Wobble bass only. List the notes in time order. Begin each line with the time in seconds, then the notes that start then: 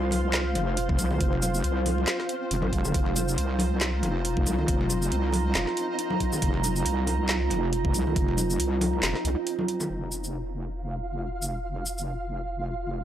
Already playing: C2
0.55 F1
0.99 C2
1.21 F1
1.64 C2
2.51 F1
2.63 G#1
2.73 F1
2.94 F1
3.38 C2
4.03 F1
4.47 C2
4.68 F1
5.12 C2
5.55 F1
6.42 F1
6.86 C2
7.51 F1
7.94 C2
8.16 F1
8.60 C2
9.03 F1
9.25 C2
9.90 F1